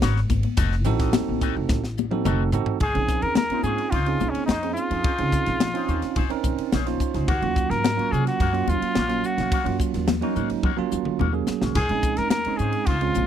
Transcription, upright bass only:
0.02 0.29 G#1 medium
0.30 0.43 G#1 medium
0.57 0.86 F1 loud
0.86 1.12 A1 loud
1.29 1.55 A1 medium
1.56 1.69 F1 medium
1.69 2.22 A1 medium
2.25 2.52 F1 loud
2.53 2.67 A1 medium
2.80 2.94 A#1 medium
2.95 3.22 A#1 medium
3.22 3.49 D#2 medium
3.50 muted upright bass stroke soft
3.63 3.77 G#2 medium
3.93 4.19 C#2 medium
4.21 4.34 A#1 medium
4.35 muted upright bass stroke soft
4.49 4.75 F2 medium
4.91 5.04 F2 medium
5.19 5.32 C#2 medium
5.47 5.73 A#1 medium
5.88 6.02 D#2 medium
6.03 muted upright bass stroke soft
6.16 6.30 A#1 medium
6.31 muted upright bass stroke soft
6.44 6.58 A#1 medium
6.59 muted upright bass stroke soft
6.73 6.99 A#1 medium
7.00 muted upright bass stroke soft
7.14 7.27 D2 medium
7.28 7.41 D#2 medium
7.42 7.69 D#2 medium
7.70 7.97 G#2 medium
7.98 muted upright bass stroke soft
8.12 8.26 C3 medium
8.40 8.67 F#2 medium
8.68 8.81 D#2 medium
8.81 muted upright bass stroke soft
8.96 9.23 A#1 medium
9.38 9.51 A#1 medium
9.66 9.79 F#2 medium
9.94 10.21 D#2 medium
10.36 10.50 G#2 medium
10.51 muted upright bass stroke soft
10.63 10.77 D#2 medium
10.79 muted upright bass stroke soft
10.92 11.06 D#2 medium
11.06 muted upright bass stroke soft
11.20 11.47 D#2 medium
11.49 muted upright bass stroke soft
11.62 11.75 B1 medium
11.75 11.89 A#1 loud
11.90 12.17 A#1 medium
12.18 12.45 D#2 medium
12.46 muted upright bass stroke soft
12.60 12.73 G#2 medium
12.87 13.14 C#2 medium
13.16 13.27 A#1 medium

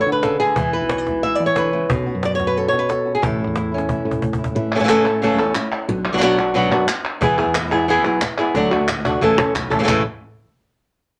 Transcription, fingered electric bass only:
0.07 0.51 D3 medium
0.56 0.78 E2 medium
0.81 1.32 B1 medium
1.40 1.84 E3 medium
1.90 2.11 B1 loud
2.15 2.66 F#2 medium
2.73 3.17 B2 medium
3.22 3.44 A1 loud
3.47 3.99 E2 medium
4.05 4.49 A2 medium
4.55 4.77 A2 loud
4.80 5.38 A2 medium
5.38 5.53 E2 medium
5.88 6.10 B1 loud
6.14 6.72 B1 medium
6.72 6.87 F#2 medium
7.21 7.43 E2 loud
7.46 8.04 E2 loud
8.04 8.19 B1 loud
8.54 8.77 D2 loud
8.80 9.17 D2 medium
9.21 9.38 A1 loud
9.38 9.53 E2 medium
9.55 9.70 B1 medium
9.71 9.87 A1 medium
9.88 10.04 A1 loud

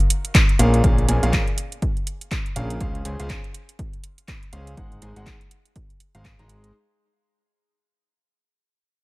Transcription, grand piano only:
0.59 0.81 A#2 medium
0.59 0.81 C#4 medium
0.59 0.81 G#4 medium
0.59 0.81 A#4 medium
0.59 0.81 F5 medium
0.84 1.06 A#2 medium
0.84 1.06 C#4 medium
0.84 1.06 G#4 medium
0.84 1.06 A#4 medium
0.84 1.06 F5 medium
1.08 1.19 A#2 medium
1.08 1.19 C#4 medium
1.08 1.19 G#4 medium
1.08 1.19 A#4 medium
1.08 1.19 G#5 medium
1.23 1.41 A#2 medium
1.23 1.41 C#4 medium
1.23 1.41 G#4 medium
1.23 1.41 A#4 medium
1.23 1.41 F5 medium
2.56 2.78 C#3 medium
2.56 2.78 C#4 medium
2.56 2.78 G#4 medium
2.56 2.78 A#4 medium
2.56 2.78 F5 loud
2.81 3.03 C#3 medium
2.81 3.03 C#4 medium
2.81 3.03 G#4 medium
2.81 3.03 C5 medium
2.81 3.03 F5 medium
3.05 3.16 C#3 medium
3.05 3.16 C#4 medium
3.05 3.16 G#4 medium
3.05 3.16 C5 medium
3.05 3.16 G#5 medium
3.20 3.38 C#3 medium
3.20 3.38 C#4 medium
3.20 3.38 G#4 medium
3.20 3.38 C5 medium
3.20 3.38 F5 medium
4.53 4.75 C#4 medium
4.53 4.75 G#4 medium
4.53 4.75 C5 medium
4.53 4.75 F5 medium
4.77 5.00 G#3 medium
4.77 5.00 D#4 medium
4.77 5.00 G#4 medium
4.77 5.00 C5 medium
4.77 5.00 F#5 medium
5.02 5.13 G#3 medium
5.02 5.13 D#4 medium
5.02 5.13 G#4 medium
5.02 5.13 C5 medium
5.02 5.13 G#5 medium
5.16 5.35 G#3 medium
5.16 5.35 D#4 medium
5.16 5.35 G#4 medium
5.16 5.35 C5 medium
5.16 5.35 F#5 medium
6.15 6.33 G#3 medium
6.15 6.33 D#4 medium
6.15 6.33 G#4 medium
6.15 6.33 C5 medium
6.15 6.33 F5 medium
6.39 6.72 G#3 medium
6.39 6.72 D#4 medium
6.39 6.72 G#4 medium
6.39 6.72 C5 medium
6.39 6.72 A#5 loud

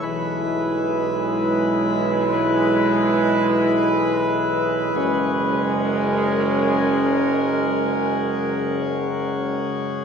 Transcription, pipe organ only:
0.03 4.92 E3 medium
0.03 4.94 G#3 loud
0.03 4.92 E4 loud
0.03 4.96 B4 loud
4.96 10.05 C#3 medium
4.96 10.05 G#3 medium
4.96 10.05 F#4 medium
4.96 10.05 G#4 medium

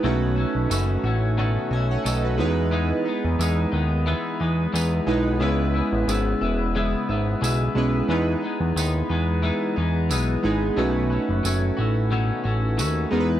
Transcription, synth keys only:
0.03 1.18 A3 medium
0.03 1.18 C#4 medium
0.03 1.19 D#4 medium
0.03 1.19 F#4 medium
0.03 1.19 B4 medium
1.73 1.90 D#5 medium
1.73 1.90 G#5 medium
1.91 2.05 C#5 medium
1.91 2.05 F#5 medium
2.05 2.23 A4 medium
2.05 2.23 D#5 medium
2.24 2.56 F#4 medium
2.24 2.39 B4 medium
2.38 3.53 G#3 medium
2.38 3.53 B3 medium
2.38 3.53 D#4 medium
2.38 3.53 E4 medium
2.38 3.54 B4 loud
5.07 5.36 G#3 medium
5.07 5.36 B3 medium
5.07 5.36 D#4 medium
5.07 5.37 E4 medium
5.07 5.37 B4 medium
5.40 6.55 G#3 medium
5.40 6.55 B3 medium
5.40 6.55 C#4 medium
5.40 6.56 E4 medium
5.40 6.56 B4 medium
7.75 8.04 G#3 medium
7.75 8.05 B3 medium
7.75 8.05 C#4 medium
7.75 8.05 E4 medium
7.75 8.06 B4 loud
8.08 9.23 G#3 medium
8.08 9.23 B3 medium
8.08 9.24 D#4 medium
8.08 9.24 E4 medium
8.08 9.24 B4 loud
10.43 10.72 G#3 medium
10.43 10.73 B3 medium
10.43 10.73 D#4 medium
10.43 10.73 E4 medium
10.43 10.73 G#4 loud
10.76 11.91 A3 medium
10.76 11.91 C#4 medium
10.76 11.92 D#4 medium
10.76 11.92 F#4 medium
10.76 11.92 B4 loud
13.11 13.40 G#3 loud
13.11 13.40 B3 medium
13.11 13.40 D#4 medium
13.11 13.40 E4 medium
13.11 13.20 A#4 medium
13.20 13.40 B4 loud

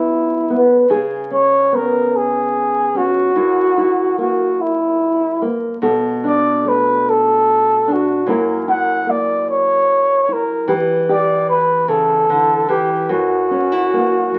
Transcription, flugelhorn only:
0.00 0.62 E4 medium
1.33 1.77 C#5 medium
1.75 2.18 A#4 medium
2.16 2.99 G#4 medium
2.97 4.18 F#4 medium
4.19 4.62 F#4 medium
4.61 5.52 E4 medium
6.27 6.70 D5 medium
6.68 7.11 B4 medium
7.09 7.94 A4 medium
7.93 8.30 F#4 medium
8.69 9.12 F#5 medium
9.10 9.49 D5 medium
9.50 10.34 C#5 medium
10.33 10.71 A#4 medium
11.11 11.48 D5 medium
11.49 11.90 B4 medium
11.89 12.69 A4 medium
12.69 13.12 G4 medium
13.10 14.39 F#4 medium

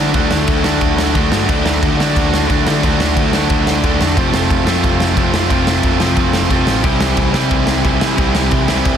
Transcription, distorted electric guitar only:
0.00 0.13 D3 medium
0.00 0.14 A3 medium
0.00 0.14 D4 medium
0.00 0.15 F#4 medium
0.13 0.66 D3 loud
0.13 0.65 A3 loud
0.13 0.64 D4 loud
0.13 0.63 F#4 loud
0.64 1.14 D3 medium
0.64 1.15 A3 medium
0.64 1.16 D4 medium
0.64 1.16 F#4 medium
1.14 1.47 D3 medium
1.14 1.48 A3 loud
1.14 1.49 D4 medium
1.14 1.50 F#4 loud
1.48 2.01 D3 medium
1.48 2.01 A3 loud
1.48 2.00 D4 loud
1.48 1.99 F#4 loud
1.99 2.48 D3 medium
1.99 2.50 A3 medium
1.99 2.49 D4 medium
1.99 2.48 F#4 medium
2.50 2.82 D3 medium
2.50 2.84 A3 medium
2.50 2.83 D4 medium
2.50 2.83 F#4 medium
2.83 3.32 D3 medium
2.83 3.35 A3 medium
2.83 3.33 D4 loud
2.83 3.32 F#4 loud
3.34 3.82 D3 medium
3.34 3.84 A3 medium
3.34 3.83 D4 medium
3.34 3.83 F#4 medium
3.83 4.16 D3 medium
3.83 4.17 A3 medium
3.83 4.17 D4 medium
3.83 4.17 F#4 medium
4.17 4.69 F3 medium
4.17 4.68 A3 loud
4.17 4.67 C4 loud
4.17 4.66 F4 medium
4.67 5.15 F3 medium
4.67 5.16 A3 medium
4.67 5.17 C4 medium
4.67 5.16 F4 medium
5.16 5.49 F3 medium
5.16 5.49 A3 medium
5.16 5.51 C4 medium
5.16 5.50 F4 medium
5.50 5.99 F3 medium
5.50 6.00 A3 medium
5.50 6.00 C4 loud
5.50 5.98 F4 loud
6.00 6.48 F3 medium
6.00 6.49 A3 medium
6.00 6.51 C4 medium
6.00 6.49 F4 medium
6.49 6.83 F3 medium
6.49 6.83 A3 medium
6.49 6.84 C4 medium
6.49 6.84 F4 loud
6.83 7.36 C3 medium
6.83 7.35 E3 medium
6.83 7.35 G3 loud
6.83 7.34 C4 loud
6.83 7.33 E4 loud
7.34 7.83 C3 medium
7.34 7.84 E3 medium
7.34 7.84 G3 medium
7.34 7.84 C4 medium
7.34 7.83 E4 medium
7.84 8.17 C3 medium
7.84 8.17 E3 medium
7.84 8.18 G3 medium
7.84 8.18 C4 medium
7.84 8.19 E4 medium
8.18 8.67 C3 medium
8.18 8.68 E3 medium
8.18 8.68 G3 loud
8.18 8.67 C4 loud
8.18 8.67 E4 loud
8.68 8.97 C3 medium
8.68 8.97 E3 medium
8.68 8.97 G3 medium
8.68 8.97 C4 medium
8.68 8.97 E4 loud

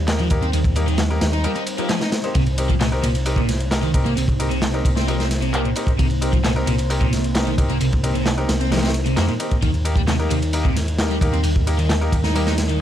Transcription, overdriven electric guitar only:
0.20 0.27 F3 medium
0.42 0.49 C4 medium
0.54 0.58 D#3 medium
0.88 0.98 D#3 medium
1.33 1.43 D#4 medium
1.44 1.52 G3 medium
1.56 1.63 D#4 loud
1.79 1.89 F3 loud
1.90 2.01 F3 medium
2.02 2.09 D#4 loud
2.35 2.43 C3 medium
2.69 2.74 F3 medium
2.81 2.88 A#2 medium
3.03 3.11 A#2 medium
3.37 3.48 A#2 medium
3.83 3.90 D#3 medium
4.06 4.13 A#3 medium
4.17 4.21 C3 medium
4.51 4.62 C3 medium
4.96 5.07 C4 medium
5.08 5.15 F3 medium
5.19 5.27 C4 loud
5.42 5.53 C3 medium
5.53 5.61 A#3 loud
5.65 5.69 A#2 medium
5.99 6.06 C3 medium
6.33 6.38 F3 medium
6.44 6.52 A#2 medium
6.67 6.75 A#2 medium
7.01 7.12 A#2 medium
7.47 7.54 D#3 medium
7.70 7.77 A#3 medium
7.81 7.85 C3 medium
8.15 8.26 C3 medium
8.61 8.71 C4 medium
8.72 8.79 F3 medium
8.83 8.90 C4 loud
9.06 9.17 C3 medium
9.17 9.24 A#3 loud
9.29 9.33 A#2 medium
9.62 9.70 D#3 medium
9.97 10.01 G3 medium
10.07 10.15 C3 medium
10.31 10.38 C3 medium
10.65 10.76 C3 medium
11.10 11.18 G3 medium
11.33 11.40 C4 medium
11.44 11.49 D#3 medium
11.78 11.89 D#3 medium
12.24 12.34 D#4 medium
12.35 12.43 G3 medium
12.47 12.54 D#4 loud
12.69 12.80 D#3 medium

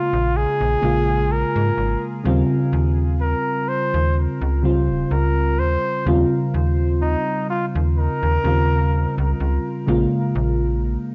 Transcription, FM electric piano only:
0.00 0.77 C#3 medium
0.00 0.77 G#3 medium
0.00 0.78 A#3 medium
0.00 0.78 F4 medium
0.81 2.20 C#3 medium
0.81 2.20 G#3 medium
0.81 2.21 A#3 medium
0.81 2.21 F4 medium
2.24 4.58 C#3 medium
2.24 4.58 G3 medium
2.24 4.59 C4 medium
2.24 4.59 F4 medium
4.62 6.01 C#3 medium
4.62 6.01 G3 medium
4.62 6.02 C4 medium
4.62 6.02 F4 medium
6.06 8.39 C#3 medium
6.06 8.39 G3 medium
6.06 8.40 C4 medium
6.06 8.40 F4 medium
8.44 9.82 C#3 medium
8.44 9.82 G3 medium
8.44 9.83 C4 medium
8.44 9.83 F4 medium
9.86 11.15 C#3 medium
9.86 11.15 G#3 medium
9.86 11.15 A#3 medium
9.86 11.15 F4 medium

